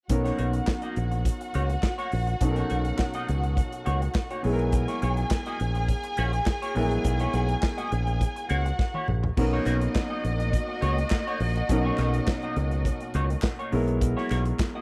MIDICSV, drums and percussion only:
0, 0, Header, 1, 2, 480
1, 0, Start_track
1, 0, Key_signature, 5, "major"
1, 0, Tempo, 579710
1, 79, Time_signature, 4, 2, 24, 8
1, 12267, End_track
2, 0, Start_track
2, 0, Title_t, "Drums"
2, 78, Note_on_c, 9, 42, 92
2, 81, Note_on_c, 9, 36, 85
2, 161, Note_off_c, 9, 42, 0
2, 164, Note_off_c, 9, 36, 0
2, 210, Note_on_c, 9, 42, 46
2, 218, Note_on_c, 9, 38, 33
2, 293, Note_off_c, 9, 42, 0
2, 301, Note_off_c, 9, 38, 0
2, 319, Note_on_c, 9, 42, 59
2, 402, Note_off_c, 9, 42, 0
2, 442, Note_on_c, 9, 42, 52
2, 525, Note_off_c, 9, 42, 0
2, 556, Note_on_c, 9, 39, 85
2, 559, Note_on_c, 9, 36, 96
2, 560, Note_on_c, 9, 38, 109
2, 638, Note_off_c, 9, 39, 0
2, 642, Note_off_c, 9, 36, 0
2, 642, Note_off_c, 9, 38, 0
2, 678, Note_on_c, 9, 42, 45
2, 761, Note_off_c, 9, 42, 0
2, 797, Note_on_c, 9, 42, 59
2, 880, Note_off_c, 9, 42, 0
2, 924, Note_on_c, 9, 42, 43
2, 1007, Note_off_c, 9, 42, 0
2, 1036, Note_on_c, 9, 36, 91
2, 1040, Note_on_c, 9, 42, 74
2, 1119, Note_off_c, 9, 36, 0
2, 1123, Note_off_c, 9, 42, 0
2, 1167, Note_on_c, 9, 42, 46
2, 1250, Note_off_c, 9, 42, 0
2, 1275, Note_on_c, 9, 42, 57
2, 1358, Note_off_c, 9, 42, 0
2, 1405, Note_on_c, 9, 42, 47
2, 1487, Note_off_c, 9, 42, 0
2, 1513, Note_on_c, 9, 39, 74
2, 1516, Note_on_c, 9, 36, 97
2, 1517, Note_on_c, 9, 38, 101
2, 1595, Note_off_c, 9, 39, 0
2, 1599, Note_off_c, 9, 36, 0
2, 1599, Note_off_c, 9, 38, 0
2, 1644, Note_on_c, 9, 42, 42
2, 1726, Note_off_c, 9, 42, 0
2, 1753, Note_on_c, 9, 46, 54
2, 1836, Note_off_c, 9, 46, 0
2, 1882, Note_on_c, 9, 42, 40
2, 1964, Note_off_c, 9, 42, 0
2, 1993, Note_on_c, 9, 42, 91
2, 1996, Note_on_c, 9, 36, 92
2, 2076, Note_off_c, 9, 42, 0
2, 2079, Note_off_c, 9, 36, 0
2, 2120, Note_on_c, 9, 42, 44
2, 2203, Note_off_c, 9, 42, 0
2, 2234, Note_on_c, 9, 42, 65
2, 2316, Note_off_c, 9, 42, 0
2, 2358, Note_on_c, 9, 42, 50
2, 2441, Note_off_c, 9, 42, 0
2, 2471, Note_on_c, 9, 39, 89
2, 2475, Note_on_c, 9, 38, 97
2, 2476, Note_on_c, 9, 36, 96
2, 2554, Note_off_c, 9, 39, 0
2, 2558, Note_off_c, 9, 38, 0
2, 2559, Note_off_c, 9, 36, 0
2, 2596, Note_on_c, 9, 42, 50
2, 2679, Note_off_c, 9, 42, 0
2, 2720, Note_on_c, 9, 42, 59
2, 2803, Note_off_c, 9, 42, 0
2, 2844, Note_on_c, 9, 42, 38
2, 2927, Note_off_c, 9, 42, 0
2, 2956, Note_on_c, 9, 36, 93
2, 2962, Note_on_c, 9, 42, 67
2, 3039, Note_off_c, 9, 36, 0
2, 3045, Note_off_c, 9, 42, 0
2, 3084, Note_on_c, 9, 42, 46
2, 3167, Note_off_c, 9, 42, 0
2, 3197, Note_on_c, 9, 42, 58
2, 3280, Note_off_c, 9, 42, 0
2, 3329, Note_on_c, 9, 42, 44
2, 3412, Note_off_c, 9, 42, 0
2, 3432, Note_on_c, 9, 39, 88
2, 3436, Note_on_c, 9, 36, 116
2, 3436, Note_on_c, 9, 38, 110
2, 3515, Note_off_c, 9, 39, 0
2, 3519, Note_off_c, 9, 36, 0
2, 3519, Note_off_c, 9, 38, 0
2, 3565, Note_on_c, 9, 42, 46
2, 3648, Note_off_c, 9, 42, 0
2, 3676, Note_on_c, 9, 46, 55
2, 3758, Note_off_c, 9, 46, 0
2, 3803, Note_on_c, 9, 42, 42
2, 3886, Note_off_c, 9, 42, 0
2, 3912, Note_on_c, 9, 42, 90
2, 3916, Note_on_c, 9, 36, 108
2, 3995, Note_off_c, 9, 42, 0
2, 3999, Note_off_c, 9, 36, 0
2, 4043, Note_on_c, 9, 42, 46
2, 4051, Note_on_c, 9, 38, 33
2, 4125, Note_off_c, 9, 42, 0
2, 4133, Note_off_c, 9, 38, 0
2, 4158, Note_on_c, 9, 42, 66
2, 4241, Note_off_c, 9, 42, 0
2, 4281, Note_on_c, 9, 42, 48
2, 4364, Note_off_c, 9, 42, 0
2, 4394, Note_on_c, 9, 39, 94
2, 4396, Note_on_c, 9, 36, 103
2, 4398, Note_on_c, 9, 38, 110
2, 4477, Note_off_c, 9, 39, 0
2, 4479, Note_off_c, 9, 36, 0
2, 4481, Note_off_c, 9, 38, 0
2, 4520, Note_on_c, 9, 42, 48
2, 4603, Note_off_c, 9, 42, 0
2, 4636, Note_on_c, 9, 42, 58
2, 4718, Note_off_c, 9, 42, 0
2, 4759, Note_on_c, 9, 42, 41
2, 4842, Note_off_c, 9, 42, 0
2, 4873, Note_on_c, 9, 36, 95
2, 4874, Note_on_c, 9, 42, 73
2, 4955, Note_off_c, 9, 36, 0
2, 4957, Note_off_c, 9, 42, 0
2, 4997, Note_on_c, 9, 42, 46
2, 5080, Note_off_c, 9, 42, 0
2, 5108, Note_on_c, 9, 42, 63
2, 5191, Note_off_c, 9, 42, 0
2, 5242, Note_on_c, 9, 42, 42
2, 5324, Note_off_c, 9, 42, 0
2, 5349, Note_on_c, 9, 39, 87
2, 5353, Note_on_c, 9, 38, 107
2, 5354, Note_on_c, 9, 36, 107
2, 5431, Note_off_c, 9, 39, 0
2, 5435, Note_off_c, 9, 38, 0
2, 5437, Note_off_c, 9, 36, 0
2, 5485, Note_on_c, 9, 42, 47
2, 5568, Note_off_c, 9, 42, 0
2, 5593, Note_on_c, 9, 46, 58
2, 5676, Note_off_c, 9, 46, 0
2, 5722, Note_on_c, 9, 42, 38
2, 5805, Note_off_c, 9, 42, 0
2, 5832, Note_on_c, 9, 42, 91
2, 5835, Note_on_c, 9, 36, 103
2, 5915, Note_off_c, 9, 42, 0
2, 5918, Note_off_c, 9, 36, 0
2, 5957, Note_on_c, 9, 42, 49
2, 6040, Note_off_c, 9, 42, 0
2, 6073, Note_on_c, 9, 42, 65
2, 6156, Note_off_c, 9, 42, 0
2, 6198, Note_on_c, 9, 42, 51
2, 6280, Note_off_c, 9, 42, 0
2, 6314, Note_on_c, 9, 39, 84
2, 6317, Note_on_c, 9, 36, 103
2, 6318, Note_on_c, 9, 38, 108
2, 6397, Note_off_c, 9, 39, 0
2, 6400, Note_off_c, 9, 36, 0
2, 6401, Note_off_c, 9, 38, 0
2, 6442, Note_on_c, 9, 42, 45
2, 6524, Note_off_c, 9, 42, 0
2, 6557, Note_on_c, 9, 42, 58
2, 6640, Note_off_c, 9, 42, 0
2, 6683, Note_on_c, 9, 42, 40
2, 6765, Note_off_c, 9, 42, 0
2, 6797, Note_on_c, 9, 36, 84
2, 6799, Note_on_c, 9, 42, 73
2, 6880, Note_off_c, 9, 36, 0
2, 6882, Note_off_c, 9, 42, 0
2, 6926, Note_on_c, 9, 42, 48
2, 7008, Note_off_c, 9, 42, 0
2, 7034, Note_on_c, 9, 42, 68
2, 7117, Note_off_c, 9, 42, 0
2, 7169, Note_on_c, 9, 42, 44
2, 7252, Note_off_c, 9, 42, 0
2, 7279, Note_on_c, 9, 36, 107
2, 7283, Note_on_c, 9, 38, 54
2, 7362, Note_off_c, 9, 36, 0
2, 7365, Note_off_c, 9, 38, 0
2, 7404, Note_on_c, 9, 48, 56
2, 7487, Note_off_c, 9, 48, 0
2, 7518, Note_on_c, 9, 45, 81
2, 7600, Note_off_c, 9, 45, 0
2, 7647, Note_on_c, 9, 43, 84
2, 7730, Note_off_c, 9, 43, 0
2, 7760, Note_on_c, 9, 49, 95
2, 7762, Note_on_c, 9, 36, 101
2, 7842, Note_off_c, 9, 49, 0
2, 7844, Note_off_c, 9, 36, 0
2, 8001, Note_on_c, 9, 39, 71
2, 8002, Note_on_c, 9, 42, 68
2, 8083, Note_off_c, 9, 39, 0
2, 8085, Note_off_c, 9, 42, 0
2, 8126, Note_on_c, 9, 42, 49
2, 8209, Note_off_c, 9, 42, 0
2, 8242, Note_on_c, 9, 36, 112
2, 8242, Note_on_c, 9, 39, 93
2, 8246, Note_on_c, 9, 38, 110
2, 8247, Note_off_c, 9, 39, 0
2, 8247, Note_on_c, 9, 39, 73
2, 8325, Note_off_c, 9, 36, 0
2, 8328, Note_off_c, 9, 38, 0
2, 8330, Note_off_c, 9, 39, 0
2, 8483, Note_on_c, 9, 42, 58
2, 8566, Note_off_c, 9, 42, 0
2, 8609, Note_on_c, 9, 42, 43
2, 8692, Note_off_c, 9, 42, 0
2, 8720, Note_on_c, 9, 36, 100
2, 8725, Note_on_c, 9, 42, 82
2, 8803, Note_off_c, 9, 36, 0
2, 8808, Note_off_c, 9, 42, 0
2, 8960, Note_on_c, 9, 42, 64
2, 9043, Note_off_c, 9, 42, 0
2, 9093, Note_on_c, 9, 42, 47
2, 9176, Note_off_c, 9, 42, 0
2, 9195, Note_on_c, 9, 39, 106
2, 9197, Note_off_c, 9, 39, 0
2, 9197, Note_on_c, 9, 39, 77
2, 9201, Note_on_c, 9, 38, 102
2, 9202, Note_on_c, 9, 36, 107
2, 9280, Note_off_c, 9, 39, 0
2, 9284, Note_off_c, 9, 38, 0
2, 9285, Note_off_c, 9, 36, 0
2, 9336, Note_on_c, 9, 42, 29
2, 9419, Note_off_c, 9, 42, 0
2, 9442, Note_on_c, 9, 46, 60
2, 9524, Note_off_c, 9, 46, 0
2, 9568, Note_on_c, 9, 42, 43
2, 9651, Note_off_c, 9, 42, 0
2, 9680, Note_on_c, 9, 42, 97
2, 9682, Note_on_c, 9, 36, 102
2, 9763, Note_off_c, 9, 42, 0
2, 9765, Note_off_c, 9, 36, 0
2, 9919, Note_on_c, 9, 39, 75
2, 9921, Note_on_c, 9, 42, 66
2, 10002, Note_off_c, 9, 39, 0
2, 10003, Note_off_c, 9, 42, 0
2, 10049, Note_on_c, 9, 42, 50
2, 10131, Note_off_c, 9, 42, 0
2, 10162, Note_on_c, 9, 39, 85
2, 10163, Note_on_c, 9, 36, 110
2, 10166, Note_off_c, 9, 39, 0
2, 10166, Note_on_c, 9, 38, 110
2, 10166, Note_on_c, 9, 39, 81
2, 10246, Note_off_c, 9, 36, 0
2, 10249, Note_off_c, 9, 38, 0
2, 10249, Note_off_c, 9, 39, 0
2, 10286, Note_on_c, 9, 42, 29
2, 10368, Note_off_c, 9, 42, 0
2, 10403, Note_on_c, 9, 42, 64
2, 10486, Note_off_c, 9, 42, 0
2, 10527, Note_on_c, 9, 42, 44
2, 10610, Note_off_c, 9, 42, 0
2, 10640, Note_on_c, 9, 36, 100
2, 10647, Note_on_c, 9, 42, 74
2, 10723, Note_off_c, 9, 36, 0
2, 10730, Note_off_c, 9, 42, 0
2, 10768, Note_on_c, 9, 42, 37
2, 10851, Note_off_c, 9, 42, 0
2, 10879, Note_on_c, 9, 42, 64
2, 10962, Note_off_c, 9, 42, 0
2, 11014, Note_on_c, 9, 42, 47
2, 11097, Note_off_c, 9, 42, 0
2, 11113, Note_on_c, 9, 39, 100
2, 11120, Note_off_c, 9, 39, 0
2, 11120, Note_on_c, 9, 39, 78
2, 11122, Note_on_c, 9, 36, 102
2, 11124, Note_on_c, 9, 38, 108
2, 11203, Note_off_c, 9, 39, 0
2, 11205, Note_off_c, 9, 36, 0
2, 11207, Note_off_c, 9, 38, 0
2, 11256, Note_on_c, 9, 42, 33
2, 11339, Note_off_c, 9, 42, 0
2, 11363, Note_on_c, 9, 46, 56
2, 11446, Note_off_c, 9, 46, 0
2, 11489, Note_on_c, 9, 42, 43
2, 11572, Note_off_c, 9, 42, 0
2, 11604, Note_on_c, 9, 36, 105
2, 11605, Note_on_c, 9, 42, 93
2, 11686, Note_off_c, 9, 36, 0
2, 11687, Note_off_c, 9, 42, 0
2, 11740, Note_on_c, 9, 38, 34
2, 11823, Note_off_c, 9, 38, 0
2, 11844, Note_on_c, 9, 39, 75
2, 11846, Note_on_c, 9, 42, 61
2, 11927, Note_off_c, 9, 39, 0
2, 11929, Note_off_c, 9, 42, 0
2, 11968, Note_on_c, 9, 42, 50
2, 12051, Note_off_c, 9, 42, 0
2, 12084, Note_on_c, 9, 36, 115
2, 12086, Note_on_c, 9, 39, 80
2, 12088, Note_off_c, 9, 39, 0
2, 12088, Note_on_c, 9, 39, 88
2, 12092, Note_on_c, 9, 38, 113
2, 12167, Note_off_c, 9, 36, 0
2, 12171, Note_off_c, 9, 39, 0
2, 12175, Note_off_c, 9, 38, 0
2, 12267, End_track
0, 0, End_of_file